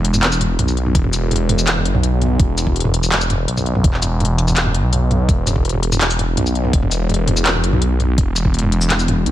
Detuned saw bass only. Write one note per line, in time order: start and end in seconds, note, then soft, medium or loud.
0.00 0.58 E1 loud
0.59 0.94 B1 medium
0.95 1.66 E1 loud
1.67 1.87 E1 medium
1.85 1.94 G1 medium
1.94 2.38 B1 loud
2.40 3.47 E1 loud
3.48 3.83 B1 medium
3.84 4.55 E1 loud
4.57 4.76 E1 medium
4.75 4.83 G1 medium
4.84 5.28 B1 loud
5.29 6.36 E1 loud
6.37 6.72 B1 medium
6.73 7.44 E1 loud
7.46 7.65 E1 medium
7.64 7.72 G1 medium
7.73 8.17 B1 loud
8.18 9.25 E1 loud
9.26 9.31 B1 medium